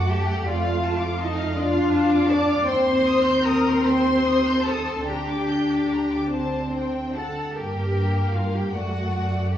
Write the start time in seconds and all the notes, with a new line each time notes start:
Already playing: F#2 A3
0.08 G4 G5 A5
0.27 F#5
0.47 F2 F4 D5 F5
0.65 F5
0.84 A5
1.01 D6
1.20 D#4 D#5 A5
1.37 F5
1.55 D4 F4 D5
1.61 F5
1.73 F5
1.93 A5
2.09 D6
2.28 D5 A5 D6
2.47 F5
2.66 D#2 C4 C5 G5 C6
2.88 C6
3.06 D#6
3.26 G6
3.43 A#4 A#5 D#6
3.67 C6
3.84 C5 G5 C6
4.07 C6
4.28 D#6
4.49 G6
4.63 A4 A5
4.68 D#6
4.87 C6
5.05 D2 D4 G4 G5 A#5
5.28 D6
5.50 G6
5.72 D6
5.93 A#5
6.12 D6
6.31 C4 C5 A5
6.74 G5
7.15 A4 F#5 A5
7.56 G2 A#3 G4 A#4 G5
8.32 F4 F5
8.55 G4 G5
8.74 F#2 A3 F#4 D5 F#5
9.53 G4 G5